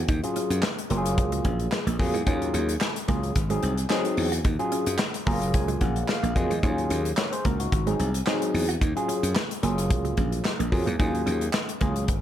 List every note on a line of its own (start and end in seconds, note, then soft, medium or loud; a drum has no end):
0.08 0.20 D#2 loud
0.08 0.19 D#4 medium
0.08 kick loud
0.08 closed hi-hat medium
0.23 0.60 F#3 medium
0.23 0.60 C#4 medium
0.23 0.60 F4 medium
0.23 0.60 G#4 medium
0.23 muted clean electric guitar stroke soft
0.23 closed hi-hat soft
0.36 0.47 C#4 medium
0.36 closed hi-hat medium
0.50 0.60 F#2 loud
0.50 closed hi-hat medium
0.63 snare loud
0.63 clap medium
0.79 closed hi-hat medium
0.90 1.19 F#1 loud
0.90 1.78 F#3 medium
0.90 1.78 A#3 medium
0.90 1.01 A#3 medium
0.90 1.78 F4 medium
0.90 0.98 G4 medium
0.90 closed hi-hat medium
0.98 1.82 G#4 medium
1.06 closed hi-hat medium
1.18 1.39 C#2 medium
1.18 muted clean electric guitar stroke soft
1.18 kick loud
1.18 closed hi-hat loud
1.32 1.42 G#3 medium
1.32 closed hi-hat medium
1.45 1.66 A#1 medium
1.45 1.56 C#4 medium
1.45 kick loud
1.45 closed hi-hat medium
1.60 closed hi-hat medium
1.72 snare loud
1.72 clap medium
1.87 1.97 A#1 medium
1.87 1.96 A#3 medium
1.87 closed hi-hat medium
1.99 2.11 F2 medium
1.99 2.15 F#3 medium
1.99 2.15 A#3 medium
1.99 2.15 F4 medium
1.99 2.15 G#4 loud
1.99 muted clean electric guitar stroke soft
1.99 kick medium
1.99 open hi-hat medium
2.14 2.24 E2 loud
2.14 2.23 G#3 medium
2.14 closed hi-hat medium
2.26 2.48 D#2 medium
2.26 2.72 F#3 medium
2.26 2.72 C#4 medium
2.26 2.37 D#4 medium
2.26 2.72 F4 medium
2.26 2.72 G#4 medium
2.26 kick loud
2.26 closed hi-hat medium
2.42 muted clean electric guitar stroke soft
2.42 closed hi-hat soft
2.54 2.75 D#2 medium
2.54 2.65 C#4 medium
2.54 closed hi-hat medium
2.69 closed hi-hat medium
2.81 snare loud
2.81 clap medium
2.96 closed hi-hat medium
3.08 3.30 C#2 medium
3.08 3.31 F#3 medium
3.08 3.19 A#3 medium
3.08 3.31 C#4 medium
3.08 3.31 F4 medium
3.08 3.31 G#4 medium
3.08 kick medium
3.08 closed hi-hat medium
3.23 closed hi-hat soft
3.36 3.57 G#1 medium
3.36 muted clean electric guitar stroke soft
3.36 kick loud
3.36 closed hi-hat loud
3.50 3.72 F#3 medium
3.50 3.60 G#3 medium
3.50 3.72 C4 medium
3.50 3.73 D#4 medium
3.50 3.73 G#4 medium
3.50 closed hi-hat medium
3.63 3.84 C2 medium
3.63 3.74 C4 medium
3.63 closed hi-hat medium
3.78 closed hi-hat medium
3.90 4.28 F#3 medium
3.90 4.28 C4 medium
3.90 4.28 D#4 medium
3.90 4.01 D#4 medium
3.90 4.28 G#4 loud
3.90 snare loud
3.90 clap medium
4.05 muted clean electric guitar stroke soft
4.05 closed hi-hat medium
4.17 4.39 E2 medium
4.17 open hi-hat medium
4.32 4.42 F#4 medium
4.32 closed hi-hat soft
4.45 4.56 D#2 loud
4.45 4.55 D#4 medium
4.45 kick loud
4.45 closed hi-hat medium
4.59 4.96 F#3 medium
4.59 4.96 C#4 medium
4.59 4.96 F4 medium
4.59 4.96 G#4 medium
4.59 muted clean electric guitar stroke soft
4.59 closed hi-hat soft
4.72 4.83 C#4 medium
4.72 closed hi-hat medium
4.86 4.97 F#2 medium
4.86 closed hi-hat medium
4.98 snare loud
4.98 clap medium
5.14 closed hi-hat medium
5.26 5.56 F#1 loud
5.26 6.14 F#3 medium
5.26 5.34 A3 medium
5.26 5.37 A#3 medium
5.26 6.14 F4 medium
5.26 6.15 G#4 medium
5.26 5.52 A#5 medium
5.26 kick medium
5.26 open hi-hat medium
5.33 6.18 A#3 medium
5.42 closed hi-hat medium
5.54 5.75 C#2 medium
5.54 5.80 G#5 medium
5.54 muted clean electric guitar stroke soft
5.54 kick loud
5.54 closed hi-hat loud
5.68 5.78 G#3 medium
5.68 closed hi-hat medium
5.81 6.03 A#1 medium
5.81 5.92 C#4 medium
5.81 6.07 F#5 medium
5.81 kick loud
5.81 closed hi-hat medium
5.96 closed hi-hat medium
6.08 6.34 F5 medium
6.08 snare loud
6.08 clap medium
6.23 6.33 A#1 medium
6.23 6.32 A#3 medium
6.23 closed hi-hat soft
6.35 6.47 F2 medium
6.35 6.51 F#3 medium
6.35 6.51 A#3 medium
6.35 6.52 F4 medium
6.35 6.52 G#4 loud
6.35 6.61 D#5 medium
6.35 kick medium
6.35 closed hi-hat medium
6.50 6.60 E2 medium
6.50 6.60 G#3 medium
6.50 closed hi-hat soft
6.63 6.85 D#2 loud
6.63 6.70 F3 medium
6.63 7.08 C#4 medium
6.63 6.74 D#4 medium
6.63 7.09 F4 medium
6.63 7.09 G#4 medium
6.63 kick loud
6.63 closed hi-hat medium
6.69 7.12 F#3 medium
6.78 muted clean electric guitar stroke soft
6.78 closed hi-hat soft
6.90 7.12 D#2 medium
6.90 7.01 C#4 medium
6.90 closed hi-hat medium
7.05 closed hi-hat medium
7.17 7.32 A#4 medium
7.17 7.32 C#5 medium
7.17 snare loud
7.17 clap medium
7.32 7.45 G#4 medium
7.32 7.44 C5 medium
7.32 closed hi-hat medium
7.45 7.66 C#2 medium
7.45 7.56 A#3 medium
7.45 7.59 F#4 medium
7.45 7.59 A#4 medium
7.45 kick loud
7.45 closed hi-hat medium
7.60 7.86 D#4 medium
7.60 7.86 F#4 medium
7.60 closed hi-hat medium
7.72 7.94 G#1 loud
7.72 muted clean electric guitar stroke soft
7.72 kick loud
7.72 closed hi-hat medium
7.87 8.09 F#3 medium
7.87 7.96 G#3 medium
7.87 8.09 C4 medium
7.87 8.09 D#4 medium
7.87 8.09 G#4 medium
7.87 closed hi-hat medium
8.00 8.21 C2 medium
8.00 8.10 C4 medium
8.00 closed hi-hat medium
8.14 closed hi-hat medium
8.27 8.65 F#3 medium
8.27 8.65 C4 medium
8.27 8.37 D#4 medium
8.27 8.65 D#4 medium
8.27 8.65 G#4 medium
8.27 snare medium
8.27 clap medium
8.42 muted clean electric guitar stroke soft
8.42 closed hi-hat medium
8.54 8.75 E2 medium
8.54 open hi-hat medium
8.69 8.78 F#4 medium
8.69 closed hi-hat soft
8.81 8.93 D#2 loud
8.81 8.92 D#4 medium
8.81 kick loud
8.81 closed hi-hat medium
8.96 9.33 F#3 medium
8.96 9.33 C#4 medium
8.96 9.33 F4 medium
8.96 9.33 G#4 medium
8.96 muted clean electric guitar stroke soft
8.96 closed hi-hat soft
9.08 9.19 C#4 medium
9.08 closed hi-hat medium
9.23 9.33 F#2 medium
9.23 closed hi-hat medium
9.35 snare loud
9.35 clap medium
9.51 closed hi-hat medium
9.63 9.92 F#1 loud
9.63 10.51 F#3 medium
9.63 10.51 A#3 medium
9.63 9.74 A#3 medium
9.63 10.51 F4 medium
9.63 10.51 G#4 medium
9.63 closed hi-hat medium
9.78 closed hi-hat medium
9.90 10.12 C#2 medium
9.90 muted clean electric guitar stroke soft
9.90 kick loud
9.90 closed hi-hat loud
10.05 10.14 G#3 medium
10.05 closed hi-hat soft
10.17 10.39 A#1 medium
10.17 10.28 C#4 medium
10.17 kick medium
10.17 closed hi-hat medium
10.32 closed hi-hat medium
10.45 snare medium
10.45 clap medium
10.59 10.70 A#1 medium
10.59 10.69 A#3 medium
10.59 closed hi-hat medium
10.72 10.84 F2 medium
10.72 10.88 F#3 loud
10.72 10.88 A#3 medium
10.72 10.88 F4 medium
10.72 10.88 G#4 loud
10.72 muted clean electric guitar stroke soft
10.72 kick medium
10.72 open hi-hat medium
10.86 10.97 E2 loud
10.86 10.96 G#3 medium
10.86 closed hi-hat soft
10.99 11.21 D#2 loud
10.99 11.45 F#3 medium
10.99 11.45 C#4 medium
10.99 11.10 D#4 medium
10.99 11.45 F4 medium
10.99 11.45 G#4 loud
10.99 kick loud
10.99 closed hi-hat medium
11.14 muted clean electric guitar stroke soft
11.14 closed hi-hat soft
11.26 11.48 D#2 medium
11.26 11.37 C#4 medium
11.26 closed hi-hat medium
11.41 closed hi-hat medium
11.53 snare loud
11.53 clap medium
11.69 closed hi-hat medium
11.81 12.10 C#2 loud
11.81 12.04 F#3 medium
11.81 11.92 A#3 medium
11.81 12.04 C#4 medium
11.81 12.04 F4 medium
11.81 12.04 G#4 medium
11.81 kick medium
11.81 closed hi-hat medium
11.96 closed hi-hat medium
12.08 12.21 G#1 medium
12.08 muted clean electric guitar stroke soft
12.08 kick loud
12.08 closed hi-hat medium